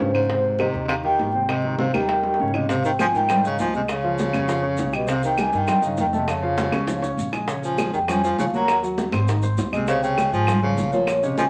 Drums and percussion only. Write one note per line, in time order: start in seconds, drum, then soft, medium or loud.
0.00 high bongo soft
0.00 low bongo medium
0.15 claves medium
0.30 high bongo medium
0.30 high conga soft
0.44 high bongo soft
0.44 high conga soft
0.59 high bongo medium
0.59 high conga loud
0.59 claves medium
0.74 high bongo soft
0.74 high conga soft
0.89 high bongo medium
0.89 high conga soft
0.89 claves medium
1.04 high bongo soft
1.04 high conga soft
1.19 high bongo soft
1.19 low bongo medium
1.19 high conga medium
1.34 high conga medium
1.49 high bongo medium
1.49 high conga soft
1.49 claves medium
1.64 high bongo soft
1.64 high conga soft
1.79 high bongo medium
1.79 high conga medium
1.94 high bongo soft
1.94 high conga loud
1.94 claves medium
2.09 high bongo medium
2.09 high conga soft
2.23 high bongo medium
2.23 high conga soft
2.34 high bongo medium
2.40 high conga medium
2.54 low bongo medium
2.54 claves medium
2.69 high bongo medium
2.69 high conga soft
2.69 maracas medium
2.84 high bongo soft
2.84 high conga soft
2.84 maracas soft
2.99 high bongo medium
2.99 high conga loud
2.99 claves medium
2.99 maracas medium
3.14 high bongo soft
3.14 high conga soft
3.14 maracas soft
3.29 high bongo medium
3.29 high conga soft
3.29 low conga medium
3.29 claves medium
3.29 maracas medium
3.45 high bongo soft
3.45 maracas medium
3.59 high bongo soft
3.59 low bongo medium
3.59 high conga medium
3.59 maracas medium
3.74 high conga medium
3.74 maracas soft
3.88 high bongo medium
3.88 high conga soft
3.88 claves medium
3.88 maracas medium
4.05 high bongo soft
4.05 high conga soft
4.18 high bongo medium
4.18 high conga loud
4.18 maracas medium
4.33 high bongo soft
4.33 high conga loud
4.33 claves medium
4.33 maracas soft
4.48 high bongo medium
4.48 high conga soft
4.48 maracas medium
4.64 high bongo soft
4.64 high conga soft
4.77 high bongo soft
4.77 low bongo medium
4.77 high conga medium
4.77 maracas medium
4.93 claves medium
4.93 maracas soft
5.07 high bongo medium
5.07 high conga soft
5.07 maracas medium
5.23 high bongo soft
5.23 high conga soft
5.23 maracas medium
5.38 high bongo medium
5.38 high conga loud
5.38 claves medium
5.38 maracas medium
5.53 high bongo soft
5.53 high conga soft
5.53 maracas soft
5.68 high bongo medium
5.68 high conga soft
5.68 low conga medium
5.68 claves medium
5.68 maracas medium
5.83 high bongo soft
5.83 high conga soft
5.83 maracas medium
5.97 high bongo soft
5.97 low bongo medium
5.97 high conga medium
5.97 maracas medium
6.13 high conga medium
6.13 maracas soft
6.28 high bongo medium
6.28 high conga soft
6.28 claves medium
6.28 maracas medium
6.42 high bongo soft
6.42 high conga soft
6.58 high bongo loud
6.58 high conga loud
6.58 maracas medium
6.72 high bongo medium
6.72 high conga loud
6.72 claves medium
6.72 maracas soft
6.87 low bongo medium
6.87 high conga soft
6.87 maracas medium
7.02 low bongo medium
7.02 high conga soft
7.02 maracas medium
7.17 high conga medium
7.17 maracas medium
7.33 low bongo medium
7.33 claves medium
7.33 maracas soft
7.48 high bongo medium
7.48 high conga soft
7.48 maracas medium
7.63 high bongo soft
7.63 high conga soft
7.63 maracas medium
7.78 high bongo medium
7.78 high conga loud
7.78 claves medium
7.78 maracas medium
7.93 high bongo soft
7.93 high conga soft
7.93 maracas soft
8.08 high bongo medium
8.08 high conga soft
8.08 low conga medium
8.08 claves medium
8.08 maracas medium
8.23 high bongo soft
8.23 maracas medium
8.38 high bongo soft
8.38 low bongo medium
8.38 high conga medium
8.38 maracas medium
8.54 high conga medium
8.54 maracas soft
8.68 high bongo medium
8.68 high conga soft
8.68 claves medium
8.68 maracas medium
8.83 high bongo soft
8.83 high conga soft
8.83 maracas medium
8.98 high bongo medium
8.98 high conga loud
8.98 maracas medium
9.12 high bongo soft
9.12 high conga loud
9.12 claves medium
9.12 maracas soft
9.28 high bongo medium
9.28 high conga soft
9.28 maracas medium
9.42 high bongo soft
9.42 high conga soft
9.42 maracas medium
9.58 high bongo soft
9.58 low bongo medium
9.58 high conga loud
9.58 maracas medium
9.73 high conga medium
9.73 claves medium
9.73 maracas soft
9.87 high bongo medium
9.87 high conga soft
9.87 maracas medium
10.03 high bongo soft
10.03 high conga soft
10.03 maracas medium
10.18 high bongo medium
10.18 high conga medium
10.18 claves medium
10.18 maracas medium
10.33 high bongo soft
10.33 high conga soft
10.33 maracas soft
10.47 high bongo medium
10.47 high conga soft
10.47 low conga medium
10.47 claves medium
10.47 maracas medium
10.63 high bongo soft
10.63 high conga soft
10.63 low conga medium
10.78 high bongo soft
10.78 low bongo medium
10.78 high conga medium
10.78 maracas medium
10.93 high conga medium
10.93 maracas soft
11.07 high bongo medium
11.07 high conga soft
11.07 claves medium
11.07 maracas medium
11.23 high bongo soft
11.23 high conga soft
11.23 maracas soft
11.38 high bongo medium
11.38 high conga loud
11.38 maracas medium